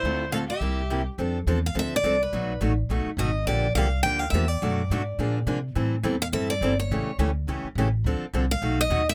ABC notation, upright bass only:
X:1
M:4/4
L:1/8
Q:"Swing" 1/4=210
K:F
V:1 name="Upright bass" clef=bass
D,,4 C,,4 | F,,2 E,,2 D,,2 C,,2 | =B,,,2 A,,,2 B,,, z ^G,,,2 | B,,,2 C,,2 D,,2 E,,2 |
^F,,2 ^G,,2 B,,2 C,2 | A,,2 E,,2 G,,2 G,,,2 | A,,, z D,,2 ^C,, z A,,,2 | D,, z C,,2 =B,,,2 ^D,,2 |]